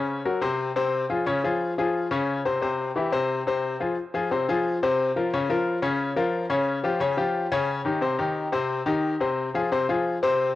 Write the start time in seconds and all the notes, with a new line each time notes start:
Already playing: C#3 C#4 C#5
0.25 F#3 F#4 A#4
0.41 C3 C4 C5
0.76 C3 C4 C5
1.10 F3 F4 G#4
1.26 C#3 C#4 C#5
1.44 F3 F4 G#4
1.78 F3 F4 G#4
2.11 C#3 C#4 C#5
2.45 C3 C4 C5
2.62 C3 C4 C5
2.96 E3 E4 G4
3.12 C3 C4 C5
3.47 C3 C4 C5
3.80 F3 F4 G#4
4.14 F3 F4 G#4
4.31 C3 C4 C5
4.49 F3 F4 G#4
4.83 C3 C4 C5
5.16 F3 F4 A#4
5.33 C#3 C#4 C#5
5.50 F3 F4 A#4
5.82 C#3 C#4 C#5
6.16 F3 F4 A#4
6.50 C#3 C#4 C#5
6.84 F3 F4 G4
7.00 C#3 C#4 C#5
7.17 F3 F4 G4
7.52 C#3 C#4 C#5
7.85 D#3 D#4 G4
8.01 C3 C4 C5
8.19 D#3 D#4 G4
8.52 C3 C4 C5
8.86 D#3 D#4 G4
9.20 C3 C4 C5
9.54 F3 F4 G#4
9.72 C3 C4 C5
9.89 F3 F4 G#4
10.23 C3 C4 C5